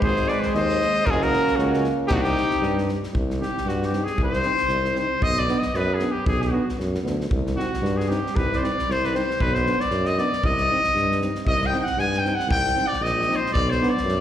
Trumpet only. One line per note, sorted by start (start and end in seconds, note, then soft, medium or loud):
0.04 0.33 G#4 medium
0.31 0.48 B4 medium
0.47 0.56 G#4 medium
0.56 1.12 C5 loud
1.10 1.17 F#4 loud
1.16 1.25 F4 medium
1.23 1.64 F#4 medium
1.62 1.86 C#4 medium
2.08 2.18 D#4 loud
2.16 2.26 D4 medium
2.25 2.88 D#4 loud
3.41 3.69 G4 medium
3.68 3.87 F#4 medium
3.85 4.06 G4 medium
4.04 4.20 G#4 medium
4.24 4.95 C5 loud
4.99 5.24 C5 medium
5.22 5.40 D#5 loud
5.39 5.60 D5 loud
5.59 5.77 D#5 medium
5.76 5.96 B4 medium
5.94 6.13 G#4 medium
6.11 6.27 G4 medium
6.27 6.43 G#4 medium
6.42 6.69 F#4 medium
7.56 7.98 F#4 medium
7.97 8.10 G#4 medium
8.08 8.37 G4 medium
8.36 8.55 B4 loud
8.54 8.63 C5 medium
8.54 8.59 D5 medium
8.62 8.93 D5 medium
8.91 9.06 C5 loud
9.05 9.17 B4 medium
9.15 9.43 C5 medium
9.41 9.55 B4 medium
9.54 9.82 C5 medium
9.81 10.08 D5 medium
10.06 10.18 D#5 medium
10.19 10.47 D5 medium
10.45 11.22 D#5 loud
11.47 11.67 D#5 loud
11.66 11.79 G5 loud
11.80 12.01 F#5 loud
11.80 11.84 G5 medium
11.99 12.20 G#5 loud
12.18 12.36 G5 medium
12.35 12.50 F#5 medium
12.50 12.89 G5 loud
12.87 13.04 D5 medium
13.03 13.37 D#5 loud
13.36 13.51 C5 medium
13.52 13.71 D5 loud
13.70 13.91 C5 medium
13.90 14.21 D5 medium